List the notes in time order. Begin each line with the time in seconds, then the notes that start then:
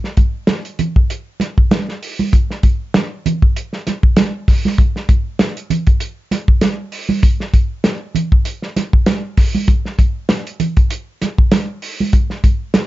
0.04 snare
0.17 kick, closed hi-hat, muted conga
0.47 snare, closed hi-hat, high conga
0.65 closed hi-hat
0.79 closed hi-hat, low conga
0.96 kick
1.10 closed hi-hat
1.40 snare, closed hi-hat, muted conga
1.58 kick
1.71 snare, closed hi-hat, high conga
1.89 snare
2.03 open hi-hat
2.19 high conga
2.33 kick, closed hi-hat, muted conga
2.50 snare
2.63 kick, closed hi-hat, muted conga
2.94 snare, closed hi-hat, high conga
3.26 closed hi-hat, low conga
3.42 kick
3.56 closed hi-hat
3.73 snare
3.87 snare, closed hi-hat, muted conga
4.03 kick
4.17 snare, closed hi-hat, high conga
4.48 kick, snare, open hi-hat
4.65 snare, high conga
4.78 kick, closed hi-hat, muted conga
4.96 snare
5.09 kick, closed hi-hat, muted conga
5.39 snare, closed hi-hat, high conga
5.57 closed hi-hat
5.70 closed hi-hat, low conga
5.87 kick, closed hi-hat
6.00 closed hi-hat
6.31 snare, closed hi-hat, muted conga
6.48 kick
6.61 snare, closed hi-hat, high conga
6.92 open hi-hat
7.09 high conga
7.23 kick, closed hi-hat, muted conga
7.40 snare
7.54 kick, closed hi-hat
7.84 snare, closed hi-hat, high conga
8.15 closed hi-hat, low conga
8.32 kick
8.45 closed hi-hat
8.62 snare
8.76 snare, closed hi-hat, muted conga
8.93 kick
9.06 snare, closed hi-hat, high conga
9.37 kick, snare, open hi-hat
9.55 high conga
9.68 kick, closed hi-hat, muted conga
9.85 snare
9.98 kick, closed hi-hat, muted conga
10.29 snare, closed hi-hat, high conga
10.47 closed hi-hat
10.60 closed hi-hat, low conga
10.77 kick, closed hi-hat
10.90 closed hi-hat
11.21 snare, closed hi-hat, muted conga
11.38 kick
11.51 snare, closed hi-hat, high conga
11.82 open hi-hat
12.00 high conga
12.13 kick, closed hi-hat, muted conga
12.30 snare
12.44 kick, closed hi-hat, muted conga
12.74 snare, closed hi-hat, high conga